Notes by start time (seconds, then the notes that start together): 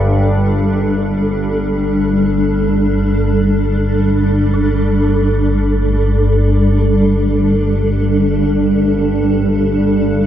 Already playing: G1 G2 G3 D4 A4
4.54 G1 G2 A4